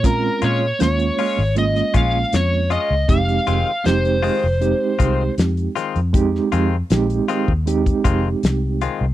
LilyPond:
<<
  \new Staff \with { instrumentName = "Electric slide guitar" } { \time 4/4 \key f \minor \tempo 4 = 79 bes'8 des''8 des''4 ees''8 f''8 des''8 ees''8 | f''4 c''2 r4 | r1 | }
  \new Staff \with { instrumentName = "Reed electric piano" } { \time 4/4 \key f \minor <aes c' des' f'>8. r16 <aes bes des' f'>8. r16 <aes bes des' f'>4. r8 | <aes c' ees' g'>8. r16 <aes c' ees' g'>8. r16 <aes c' ees' g'>4. r8 | <aes c' ees' g'>8. r16 <aes c' ees' g'>8. r16 <aes c' ees' g'>4. r8 | }
  \new Staff \with { instrumentName = "Clean electric guitar" } { \time 4/4 \key f \minor r8 <aes des' f'>8 r8 <aes des' f'>8 r8 <aes des' f'>8 r8 <aes des' f'>8 | r8 <ees aes c' f'>8 r8 <ees aes c' f'>8 r8 <ees aes c' f'>8 r8 <ees aes c' f'>8 | r8 <ees aes c' f'>8 r8 <ees aes c' f'>8 r8 <ees aes c' f'>8 r8 <ees aes c' f'>8 | }
  \new Staff \with { instrumentName = "Fingered electric bass" } { \clef bass \time 4/4 \key f \minor bes,8 bes,8 ees,8 r16 aes,,8. bes,,8 f,8. des,16 | f,,8 f,,16 r16 f,,8. f,,8 r16 c,8 f,8 r16 f,16~ | f,8 f,8 bes,,8 r16 ees,8. f,,8 c,8. c,16 | }
  \new DrumStaff \with { instrumentName = "Drums" } \drummode { \time 4/4 <hh bd>8 hh8 <hh sn>16 hh16 hho8 hh16 hh16 <hh bd>8 <hh sn>8 hh8 | <hh bd>16 hh16 hh8 <hh sn>16 hh16 hho8 hh8 <hh bd>8 <hh sn>16 hh16 <hh sn>16 hh16 | <hh bd>16 sn16 hh8 <hh sn>16 hh16 hh16 bd16 hh16 <hh bd>16 <hh bd>8 <hh sn>8 hh8 | }
>>